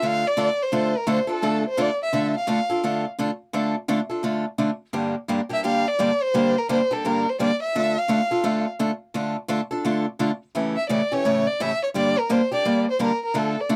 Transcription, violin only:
0, 0, Header, 1, 2, 480
1, 0, Start_track
1, 0, Key_signature, -1, "minor"
1, 0, Tempo, 350467
1, 996, Time_signature, 4, 2, 24, 8
1, 18844, End_track
2, 0, Start_track
2, 0, Title_t, "Violin"
2, 0, Program_c, 0, 40
2, 80, Note_on_c, 0, 77, 109
2, 373, Note_on_c, 0, 74, 107
2, 394, Note_off_c, 0, 77, 0
2, 849, Note_on_c, 0, 72, 93
2, 869, Note_off_c, 0, 74, 0
2, 1330, Note_on_c, 0, 70, 91
2, 1351, Note_off_c, 0, 72, 0
2, 1497, Note_off_c, 0, 70, 0
2, 1527, Note_on_c, 0, 72, 82
2, 1776, Note_off_c, 0, 72, 0
2, 1818, Note_on_c, 0, 69, 85
2, 2242, Note_off_c, 0, 69, 0
2, 2302, Note_on_c, 0, 72, 93
2, 2478, Note_on_c, 0, 74, 94
2, 2498, Note_off_c, 0, 72, 0
2, 2751, Note_off_c, 0, 74, 0
2, 2770, Note_on_c, 0, 76, 93
2, 3199, Note_off_c, 0, 76, 0
2, 3253, Note_on_c, 0, 77, 85
2, 4138, Note_off_c, 0, 77, 0
2, 7577, Note_on_c, 0, 76, 101
2, 7731, Note_off_c, 0, 76, 0
2, 7746, Note_on_c, 0, 77, 104
2, 8051, Note_on_c, 0, 74, 101
2, 8071, Note_off_c, 0, 77, 0
2, 8515, Note_on_c, 0, 72, 108
2, 8536, Note_off_c, 0, 74, 0
2, 9012, Note_on_c, 0, 70, 89
2, 9032, Note_off_c, 0, 72, 0
2, 9180, Note_off_c, 0, 70, 0
2, 9189, Note_on_c, 0, 72, 93
2, 9487, Note_on_c, 0, 69, 84
2, 9507, Note_off_c, 0, 72, 0
2, 9671, Note_on_c, 0, 70, 93
2, 9691, Note_off_c, 0, 69, 0
2, 9986, Note_on_c, 0, 72, 79
2, 10006, Note_off_c, 0, 70, 0
2, 10140, Note_off_c, 0, 72, 0
2, 10148, Note_on_c, 0, 74, 98
2, 10408, Note_off_c, 0, 74, 0
2, 10446, Note_on_c, 0, 76, 102
2, 10921, Note_on_c, 0, 77, 97
2, 10942, Note_off_c, 0, 76, 0
2, 11867, Note_off_c, 0, 77, 0
2, 14737, Note_on_c, 0, 76, 89
2, 14908, Note_off_c, 0, 76, 0
2, 14923, Note_on_c, 0, 74, 90
2, 15243, Note_on_c, 0, 73, 105
2, 15263, Note_off_c, 0, 74, 0
2, 15706, Note_on_c, 0, 74, 92
2, 15726, Note_off_c, 0, 73, 0
2, 15905, Note_on_c, 0, 76, 106
2, 15926, Note_off_c, 0, 74, 0
2, 16184, Note_off_c, 0, 76, 0
2, 16204, Note_on_c, 0, 73, 90
2, 16281, Note_off_c, 0, 73, 0
2, 16383, Note_on_c, 0, 74, 106
2, 16692, Note_on_c, 0, 70, 83
2, 16712, Note_off_c, 0, 74, 0
2, 16871, Note_on_c, 0, 72, 90
2, 16892, Note_off_c, 0, 70, 0
2, 17147, Note_off_c, 0, 72, 0
2, 17160, Note_on_c, 0, 74, 99
2, 17592, Note_off_c, 0, 74, 0
2, 17675, Note_on_c, 0, 72, 93
2, 17819, Note_off_c, 0, 72, 0
2, 17857, Note_on_c, 0, 70, 91
2, 18101, Note_off_c, 0, 70, 0
2, 18155, Note_on_c, 0, 70, 91
2, 18319, Note_on_c, 0, 69, 84
2, 18340, Note_off_c, 0, 70, 0
2, 18634, Note_on_c, 0, 74, 80
2, 18655, Note_off_c, 0, 69, 0
2, 18844, Note_off_c, 0, 74, 0
2, 18844, End_track
0, 0, End_of_file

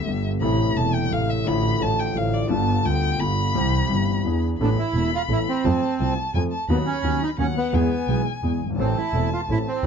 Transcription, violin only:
0, 0, Header, 1, 2, 480
1, 0, Start_track
1, 0, Key_signature, 0, "major"
1, 0, Tempo, 349243
1, 574, Time_signature, 3, 2, 24, 8
1, 6322, Key_signature, 0, "minor"
1, 13558, End_track
2, 0, Start_track
2, 0, Title_t, "Violin"
2, 0, Program_c, 0, 40
2, 0, Note_on_c, 0, 76, 87
2, 329, Note_off_c, 0, 76, 0
2, 569, Note_on_c, 0, 83, 85
2, 1057, Note_on_c, 0, 81, 96
2, 1078, Note_off_c, 0, 83, 0
2, 1293, Note_on_c, 0, 79, 87
2, 1314, Note_off_c, 0, 81, 0
2, 1549, Note_on_c, 0, 77, 87
2, 1570, Note_off_c, 0, 79, 0
2, 1787, Note_on_c, 0, 76, 81
2, 1808, Note_off_c, 0, 77, 0
2, 2022, Note_on_c, 0, 83, 90
2, 2042, Note_off_c, 0, 76, 0
2, 2506, Note_on_c, 0, 81, 100
2, 2527, Note_off_c, 0, 83, 0
2, 2739, Note_on_c, 0, 79, 89
2, 2759, Note_off_c, 0, 81, 0
2, 2983, Note_on_c, 0, 77, 86
2, 3003, Note_off_c, 0, 79, 0
2, 3214, Note_on_c, 0, 74, 88
2, 3234, Note_off_c, 0, 77, 0
2, 3436, Note_off_c, 0, 74, 0
2, 3445, Note_on_c, 0, 81, 90
2, 3921, Note_on_c, 0, 79, 100
2, 3942, Note_off_c, 0, 81, 0
2, 4401, Note_on_c, 0, 83, 98
2, 4421, Note_off_c, 0, 79, 0
2, 6083, Note_off_c, 0, 83, 0
2, 6323, Note_on_c, 0, 83, 77
2, 7764, Note_on_c, 0, 81, 79
2, 7784, Note_off_c, 0, 83, 0
2, 8234, Note_off_c, 0, 81, 0
2, 8243, Note_on_c, 0, 81, 85
2, 8688, Note_off_c, 0, 81, 0
2, 8724, Note_on_c, 0, 80, 81
2, 8831, Note_off_c, 0, 80, 0
2, 8960, Note_on_c, 0, 81, 76
2, 9183, Note_off_c, 0, 81, 0
2, 9213, Note_on_c, 0, 83, 73
2, 10107, Note_off_c, 0, 83, 0
2, 10165, Note_on_c, 0, 78, 78
2, 10641, Note_on_c, 0, 80, 79
2, 10662, Note_off_c, 0, 78, 0
2, 11838, Note_off_c, 0, 80, 0
2, 12073, Note_on_c, 0, 81, 72
2, 13466, Note_off_c, 0, 81, 0
2, 13558, End_track
0, 0, End_of_file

